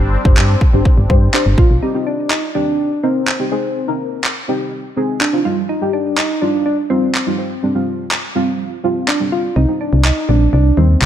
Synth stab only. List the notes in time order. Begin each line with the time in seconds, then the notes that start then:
Already playing: D4 G4 C5
0.25 D4 G4 C5
0.73 D4 G4 C5
1.09 D4 G4 C5
1.34 D4 G4 C5
1.82 C4 D#4 G4
1.94 C4 D#4 G4
2.55 D#3 C4 G4
3.03 C4 D#4 A#4
3.39 C4 D#4 G4
3.51 C4 D#4 G#4
3.88 C4 D#4 A#4
4.48 C4 D#4 G4
4.96 C4 D#4 G#4
5.33 C4 D#4 F4
5.45 G3 D#4 F4
5.81 G3 D#4 G4
6.42 G3 D#4 F4
6.90 G3 D#4 F4
7.26 G3 D#4 F4
7.62 G3 C4 D4
7.75 G3 C4 F4
8.35 G3 C4 F4
8.83 G3 C4 F4
9.20 G3 C4 D4
9.56 G3 C4 D#4
9.68 G3 C4 D#4
10.29 G3 C4 D4
10.77 G3 C4 D#4